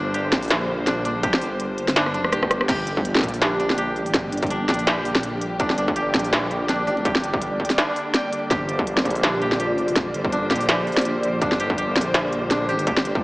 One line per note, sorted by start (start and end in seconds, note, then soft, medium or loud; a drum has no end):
0.00 0.31 G1 loud
0.00 2.65 D3 medium
0.00 2.65 G3 medium
0.00 2.65 A#3 medium
0.00 0.87 D4 medium
0.00 0.14 G4 medium
0.00 2.67 C5 medium
0.14 1.23 G4 medium
0.14 closed hi-hat medium
0.32 1.40 A#1 loud
0.32 kick medium
0.32 snare medium
0.32 closed hi-hat medium
0.42 open hi-hat medium
0.45 open hi-hat medium
0.48 snare loud
0.48 closed hi-hat medium
0.48 open hi-hat soft
0.87 1.05 D4 medium
0.87 snare medium
0.87 closed hi-hat medium
1.05 1.95 D4 medium
1.05 closed hi-hat medium
1.23 2.32 G4 medium
1.23 kick loud
1.23 closed hi-hat medium
1.34 snare medium
1.41 2.49 G1 medium
1.41 open hi-hat medium
1.60 closed hi-hat medium
1.78 closed hi-hat medium
1.88 snare medium
1.88 open hi-hat medium
1.96 2.14 D4 medium
1.96 cross-stick medium
1.96 snare loud
1.96 closed hi-hat medium
2.06 cross-stick medium
2.14 3.41 D4 medium
2.14 closed hi-hat soft
2.24 cross-stick medium
2.32 2.68 G4 medium
2.32 cross-stick medium
2.32 closed hi-hat medium
2.43 kick medium
2.43 cross-stick medium
2.51 2.67 G1 loud
2.51 cross-stick loud
2.51 closed hi-hat medium
2.61 cross-stick medium
2.69 3.22 G1 loud
2.69 13.24 D3 medium
2.69 13.24 G3 medium
2.69 13.24 A#3 medium
2.69 3.78 G4 medium
2.69 8.49 G4 medium
2.69 13.24 D5 medium
2.69 kick loud
2.69 snare medium
2.69 closed hi-hat medium
2.69 crash loud
2.87 closed hi-hat medium
2.97 kick loud
3.05 closed hi-hat medium
3.15 snare medium
3.17 snare medium
3.19 snare medium
3.21 3.99 A#1 loud
3.21 kick medium
3.21 snare soft
3.21 closed hi-hat medium
3.29 closed hi-hat medium
3.34 open hi-hat medium
3.41 3.59 D4 medium
3.41 3.48 G4 medium
3.41 snare loud
3.41 closed hi-hat medium
3.52 3.57 G4 medium
3.60 4.50 D4 medium
3.60 closed hi-hat soft
3.70 snare medium
3.78 4.86 G4 medium
3.78 closed hi-hat medium
3.96 4.31 A1 loud
3.96 open hi-hat soft
4.06 open hi-hat medium
4.14 kick loud
4.14 snare medium
4.14 closed hi-hat medium
4.32 4.67 G1 loud
4.32 4.39 D4 medium
4.32 closed hi-hat medium
4.37 closed hi-hat medium
4.42 4.48 D4 medium
4.42 kick loud
4.42 closed hi-hat soft
4.47 closed hi-hat soft
4.50 4.68 D4 medium
4.50 closed hi-hat medium
4.69 5.58 A#1 loud
4.69 5.59 D4 medium
4.69 kick medium
4.69 snare medium
4.69 closed hi-hat medium
4.74 closed hi-hat medium
4.79 open hi-hat medium
4.87 5.96 G4 medium
4.87 snare loud
4.87 closed hi-hat medium
5.05 open hi-hat medium
5.15 snare medium
5.23 closed hi-hat medium
5.41 closed hi-hat medium
5.60 6.13 G1 loud
5.60 5.78 D4 medium
5.60 kick loud
5.60 closed hi-hat medium
5.70 snare medium
5.78 6.69 D4 medium
5.78 closed hi-hat medium
5.88 kick loud
5.96 7.05 G4 medium
5.96 closed hi-hat medium
6.14 7.22 A#1 loud
6.14 kick medium
6.14 snare medium
6.14 closed hi-hat medium
6.19 closed hi-hat medium
6.24 open hi-hat medium
6.33 snare loud
6.33 closed hi-hat medium
6.51 closed hi-hat soft
6.69 6.87 D4 medium
6.69 snare soft
6.69 closed hi-hat medium
6.87 7.77 D4 medium
6.87 open hi-hat soft
6.97 open hi-hat medium
7.05 8.50 G4 medium
7.05 kick loud
7.05 closed hi-hat medium
7.15 snare medium
7.23 7.58 G1 loud
7.23 closed hi-hat medium
7.34 kick loud
7.42 closed hi-hat medium
7.60 kick medium
7.65 closed hi-hat medium
7.70 snare medium
7.70 open hi-hat medium
7.78 9.23 D4 medium
7.78 snare loud
7.78 closed hi-hat medium
7.96 open hi-hat medium
8.14 9.49 G5 medium
8.14 snare medium
8.14 closed hi-hat medium
8.33 closed hi-hat medium
8.51 9.04 G1 loud
8.51 9.41 G4 medium
8.51 13.24 C5 medium
8.51 kick loud
8.51 snare medium
8.51 closed hi-hat medium
8.69 closed hi-hat medium
8.79 kick loud
8.87 closed hi-hat medium
8.97 snare medium
9.05 10.13 A#1 loud
9.05 kick medium
9.05 closed hi-hat soft
9.10 closed hi-hat medium
9.15 open hi-hat medium
9.23 10.32 D4 medium
9.23 9.30 G4 medium
9.23 snare loud
9.23 closed hi-hat medium
9.33 9.38 G4 medium
9.42 9.59 G4 medium
9.42 closed hi-hat soft
9.52 snare medium
9.60 9.68 F4 loud
9.60 10.50 G4 medium
9.60 closed hi-hat medium
9.70 9.96 F4 medium
9.78 open hi-hat soft
9.88 open hi-hat medium
9.96 kick loud
9.96 snare medium
9.96 closed hi-hat medium
10.14 10.49 G1 loud
10.14 closed hi-hat medium
10.24 kick loud
10.32 11.41 D4 medium
10.32 closed hi-hat medium
10.51 11.40 A#1 medium
10.51 10.69 G4 medium
10.51 kick medium
10.51 snare medium
10.51 closed hi-hat soft
10.56 closed hi-hat medium
10.61 open hi-hat medium
10.69 11.59 G4 medium
10.69 snare loud
10.69 closed hi-hat medium
10.87 open hi-hat soft
10.92 open hi-hat soft
10.97 snare medium
10.97 open hi-hat soft
11.01 closed hi-hat medium
11.01 open hi-hat medium
11.23 closed hi-hat medium
11.42 11.95 G1 loud
11.42 12.50 D4 medium
11.42 kick loud
11.42 closed hi-hat medium
11.52 snare medium
11.60 11.78 G4 medium
11.60 closed hi-hat medium
11.70 kick loud
11.78 12.68 G4 medium
11.78 closed hi-hat medium
11.96 13.04 A#1 loud
11.96 kick medium
11.96 snare medium
11.96 closed hi-hat soft
12.01 closed hi-hat medium
12.01 open hi-hat medium
12.14 snare loud
12.14 closed hi-hat medium
12.32 closed hi-hat soft
12.51 13.24 D4 medium
12.51 snare medium
12.51 closed hi-hat medium
12.69 12.87 G4 medium
12.69 open hi-hat soft
12.79 open hi-hat medium
12.87 13.24 G4 medium
12.87 kick loud
12.87 closed hi-hat medium
12.97 snare medium
13.05 13.24 G1 loud
13.05 closed hi-hat medium
13.15 kick loud